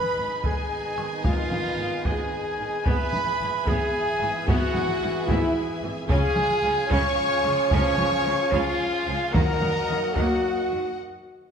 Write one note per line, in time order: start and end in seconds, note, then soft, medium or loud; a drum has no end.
0.00 2.83 D#3 medium
0.00 2.84 B3 loud
0.00 2.83 D#4 medium
0.00 5.91 G#4 medium
0.00 0.45 B4 loud
0.00 0.46 B4 loud
0.00 5.91 B4 medium
0.00 2.83 D#5 medium
0.00 2.83 G#5 medium
0.00 5.91 G#5 medium
0.00 0.43 B5 loud
0.00 0.44 B5 loud
0.17 0.25 G#1 medium
0.17 0.26 G#2 medium
0.17 0.26 D#3 medium
0.43 0.53 G#1 medium
0.43 0.52 G#2 medium
0.43 0.70 G#3 medium
0.43 1.27 G#4 medium
0.43 1.23 G#5 loud
0.43 1.24 G#5 loud
0.43 taiko medium
0.47 1.26 G#4 loud
0.97 1.06 G#1 medium
0.97 1.05 G#2 medium
0.97 1.06 D#3 medium
0.97 taiko rim soft
1.24 1.33 G#1 loud
1.24 1.33 G#2 medium
1.24 1.50 G#3 medium
1.24 2.07 F4 loud
1.24 2.05 F4 loud
1.24 2.04 F5 loud
1.24 2.06 F5 loud
1.24 taiko loud
1.51 1.61 G#1 medium
1.51 1.59 G#2 medium
1.51 1.60 D#3 medium
1.51 taiko mid medium
1.78 1.88 G#1 medium
1.78 1.86 G#2 medium
1.78 1.86 D#3 medium
2.05 2.14 G#1 medium
2.05 2.13 G#2 loud
2.05 2.31 G#3 medium
2.05 2.85 G#4 loud
2.05 2.88 G#4 loud
2.05 2.86 G#5 medium
2.05 taiko medium
2.59 2.68 G#1 medium
2.59 2.67 G#2 medium
2.59 2.68 D#3 medium
2.86 2.95 G#1 loud
2.86 2.94 G#2 medium
2.86 6.06 E3 loud
2.86 3.12 B3 loud
2.86 6.06 B3 medium
2.86 5.91 E4 medium
2.86 6.05 G#4 medium
2.86 3.70 B4 loud
2.86 3.68 B4 loud
2.86 6.06 E5 loud
2.86 6.06 G#5 medium
2.86 3.68 B5 loud
2.86 taiko loud
3.13 3.22 G#1 medium
3.13 3.21 G#2 medium
3.13 3.22 G#3 medium
3.13 taiko mid medium
3.40 3.49 G#1 medium
3.40 3.48 G#2 medium
3.40 3.49 E3 medium
3.67 3.75 G#1 loud
3.67 3.75 G#2 medium
3.67 3.92 B3 loud
3.67 4.46 G#4 loud
3.67 4.48 G#4 loud
3.67 4.49 G#5 loud
3.67 taiko medium
4.21 4.29 G#1 medium
4.21 4.29 G#2 medium
4.21 4.29 E3 medium
4.47 4.56 G#1 loud
4.47 4.56 G#2 loud
4.47 4.73 B3 loud
4.47 5.27 F#4 loud
4.47 5.28 F#4 loud
4.47 5.27 F#5 loud
4.47 5.28 F#5 loud
4.47 taiko loud
4.75 4.83 G#1 medium
4.75 4.83 G#2 medium
4.75 4.84 G#3 medium
4.75 taiko mid medium
5.02 5.10 G#1 medium
5.02 5.10 G#2 medium
5.02 5.10 E3 medium
5.27 5.37 G#1 loud
5.27 5.37 G#2 loud
5.27 5.54 B3 loud
5.27 5.55 E4 loud
5.27 5.54 E5 loud
5.27 5.56 E5 loud
5.27 taiko medium
5.82 5.90 G#1 medium
5.82 5.92 G#2 medium
5.82 5.91 E3 medium
6.06 6.17 C#2 loud
6.06 9.17 F3 loud
6.06 9.17 C#4 loud
6.06 9.34 F4 loud
6.06 6.85 G#4 loud
6.06 9.30 G#4 loud
6.06 6.93 G#4 loud
6.06 9.34 C#5 loud
6.06 9.30 F5 loud
6.06 9.30 G#5 loud
6.06 6.87 G#5 loud
6.06 9.30 G#5 loud
6.06 taiko loud
6.10 6.18 C#3 loud
6.10 6.35 C#4 loud
6.10 9.34 F4 loud
6.10 6.87 G#5 loud
6.36 6.44 C#2 medium
6.36 6.46 C#3 medium
6.36 6.45 G#3 loud
6.36 taiko mid medium
6.63 6.71 C#2 medium
6.63 6.73 C#3 medium
6.63 6.71 F3 medium
6.87 6.99 C#2 loud
6.87 7.16 C#4 loud
6.87 7.68 C#5 loud
6.87 7.72 C#5 loud
6.87 taiko medium
6.91 6.99 C#3 loud
6.91 7.71 C#6 loud
6.91 7.72 C#6 loud
7.44 7.52 C#2 medium
7.44 7.54 C#3 medium
7.44 7.54 F3 medium
7.44 taiko rim soft
7.71 7.80 C#2 loud
7.71 7.80 C#3 loud
7.71 7.96 C#4 loud
7.71 8.50 C#5 loud
7.71 8.51 C#5 loud
7.71 8.51 C#6 loud
7.71 taiko loud
7.98 8.08 C#2 medium
7.98 8.08 C#3 medium
7.98 8.06 G#3 medium
7.98 taiko mid medium
8.25 8.34 C#2 medium
8.25 8.33 C#3 loud
8.25 8.33 F3 medium
8.51 8.61 C#2 loud
8.51 8.60 C#3 loud
8.51 8.77 C#4 loud
8.51 9.36 F4 loud
8.51 9.34 F4 loud
8.51 9.32 F5 loud
8.51 9.33 F5 loud
8.51 taiko medium
9.07 9.15 C#2 medium
9.07 9.16 C#3 medium
9.07 9.15 F3 loud
9.32 9.43 D#2 loud
9.32 10.12 D#3 loud
9.32 9.42 D#3 loud
9.32 10.94 F#3 loud
9.32 9.59 A#3 loud
9.32 10.94 A#3 loud
9.32 10.98 D#4 loud
9.32 10.95 F#4 loud
9.32 10.13 A#4 loud
9.32 10.98 A#4 loud
9.32 10.17 A#4 loud
9.32 10.98 D#5 loud
9.32 10.95 D#5 loud
9.32 10.98 F#5 loud
9.32 10.95 F#5 loud
9.32 10.14 A#5 loud
9.32 10.16 A#5 loud
9.32 taiko loud
9.60 9.70 D#2 medium
9.60 9.70 D#3 medium
9.60 9.68 F#3 medium
9.60 taiko mid medium
9.88 9.97 D#2 medium
9.88 9.96 D#3 medium
9.88 9.97 D#3 medium
10.13 10.24 D#2 loud
10.13 10.24 D#3 loud
10.13 10.41 A#3 loud
10.13 10.97 F#4 loud
10.13 10.99 F#4 loud
10.13 10.98 F#5 loud
10.13 10.97 F#5 loud
10.13 taiko medium
10.71 10.79 D#2 medium
10.71 10.79 D#3 medium
10.71 10.80 D#3 medium